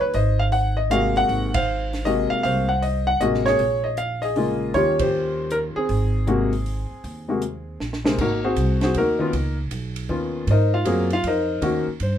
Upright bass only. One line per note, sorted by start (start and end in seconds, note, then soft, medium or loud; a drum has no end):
0.01 0.14 D#2 medium
0.14 1.25 G#1 medium
1.29 2.27 G#1 medium
2.31 muted upright bass stroke soft
2.44 3.17 C2 medium
3.20 3.56 A1 medium
3.59 4.70 A#1 medium
4.74 5.72 D#2 medium
5.76 muted upright bass stroke soft
5.89 6.87 G#1 medium
6.91 muted upright bass stroke soft
7.04 7.76 D#2 medium
7.80 8.16 A#1 medium
8.18 8.56 G#1 medium
8.56 8.94 C2 medium
8.95 9.32 D#2 medium
9.33 9.70 C#2 medium
9.71 10.08 B1 medium
10.09 10.46 D#2 medium
10.47 10.85 G#2 medium
10.86 11.23 F#2 medium
11.24 11.61 F2 medium
11.62 11.85 D#2 medium
11.87 muted upright bass stroke soft
12.00 12.18 G2 medium